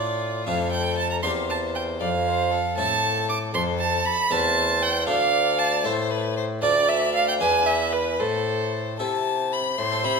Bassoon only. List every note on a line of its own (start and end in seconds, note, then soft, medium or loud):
0.00 0.46 A2 medium
0.47 1.22 F2 medium
1.23 1.99 E2 medium
2.00 2.60 F2 medium
2.77 3.52 A2 medium
3.54 4.03 F2 medium
4.30 5.09 E2 medium
5.07 5.86 D2 medium
5.85 6.62 A2 medium
6.62 7.42 D2 medium
7.40 8.19 E2 medium
8.20 8.98 A2 medium
8.99 9.77 C3 medium
9.78 10.06 A2 medium
10.04 10.20 C3 medium